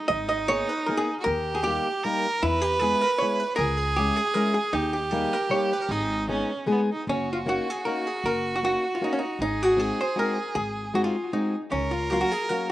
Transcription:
Already playing: D#4
0.08 G#1 D#4 D#5
0.29 D#5
0.48 A#3 B3 D#4 G#4 C#5
0.69 B4
0.86 A#3 B3 D#4 G#4 A#4
0.97 G#4
1.20 F#4 A#4
1.24 D#2 G4
1.55 G#4
1.64 G3 A#3 D#4 G4
1.68 G4
2.03 G3 A#3 D#4 G4 A#4
2.43 E2 E4 B4
2.62 G4
2.79 G#3 B3 E4 G#4
3.01 A#4
3.18 G#3 B3 E4 C#5
3.23 G#4
3.40 B4
3.56 C#2 G#4 A#4
3.77 G#4
3.96 G#3 C#4 E4 G4 G#4
4.16 G#4
4.34 G#3 C#4 E4 G#4 A#4
4.54 G#4
4.73 D#2 D#4 G4
4.93 G4
5.11 G3 A#3 D#4 G4 G#4
5.33 A#4
5.49 G3 A#3 D#4 G4 C#5
5.73 B4
5.82 A#4
5.89 G#1 D#4 G#4
6.28 G#3 B3 C#4 D#4 G#4
6.66 G#3 B3 D#4 G#4
6.71 B3
6.92 D#4
7.07 F#1 C#4 F#4
7.33 F4
7.46 A#3 C#4 D#4 F#4
7.70 G#4
7.85 A#3 C#4 D#4 F#4 A#4
8.07 G#4
8.24 F#1 A#4
8.56 F#4
8.63 A#3 C#4 D#4 F#4
8.95 F4
9.01 A#3 C#4 D#4 F#4
9.13 C#4
9.19 D#4
9.39 G#1 D#4 G#4
9.63 F#4
9.77 G#3 C4 D#4 F#4 G#4
10.01 C5
10.16 G#3 C4 D#4 F#4 A#4
10.55 G#1 G#4
10.94 G#3 C4 D#4 F#4
11.04 F4
11.33 G#3 C4 D#4 F#4
11.71 C#2 C#4 A#4
11.91 F4
12.10 F#3 A#3 C#4 F4 F#4
12.21 F#4
12.32 G#4
12.49 F#3 A#3 C#4 F#4 A#4

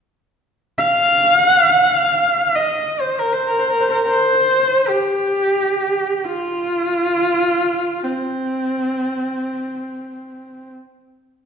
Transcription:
0.78 F5
1.40 F#5
1.57 F5
1.75 F#5
1.91 F5
2.56 D#5
3.01 C5
3.19 A#4
3.33 C5
3.44 A#4 C5
3.58 C5
3.68 A#4
3.81 C5
3.91 A#4
4.08 C5
4.89 G4
6.25 F4
8.04 C4

